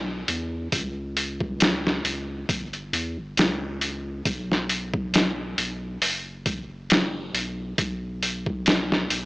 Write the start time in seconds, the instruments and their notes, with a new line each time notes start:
Already playing: analog synth bass B1
0.28 analog synth bass E2, open hi-hat
0.72 analog synth bass C#2, kick, open hi-hat
1.17 open hi-hat
1.40 kick
1.60 snare, open hi-hat
1.87 snare
2.05 analog synth bass C#2, open hi-hat
2.49 analog synth bass G1, kick, open hi-hat
2.73 closed hi-hat
2.93 analog synth bass E2, open hi-hat
3.17 analog synth bass G1
3.37 analog synth bass C#2, snare, open hi-hat
3.81 open hi-hat
4.25 analog synth bass B1, kick, open hi-hat
4.52 snare
4.69 open hi-hat
4.94 kick
5.14 snare, open hi-hat
5.58 analog synth bass B1, open hi-hat
6.02 analog synth bass F#1, open hi-hat
6.46 kick, open hi-hat
6.90 snare, open hi-hat
7.34 analog synth bass B1, open hi-hat
7.78 analog synth bass B1, kick, open hi-hat
8.23 open hi-hat
8.46 kick
8.66 snare, open hi-hat
8.92 snare
9.10 analog synth bass B1, open hi-hat